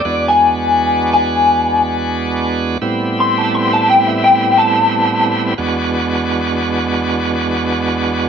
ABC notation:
X:1
M:4/4
L:1/16
Q:"Swing 16ths" 1/4=87
K:Em
V:1 name="Clean electric guitar"
d ^g4- g g8 z2 | z2 c' a c' a g e g2 a6 | z16 |]
V:2 name="Tonewheel organ"
[E,,^G,B,DF]16 | [A,,G,B,CE]16 | [E,,^G,B,DF]16 |]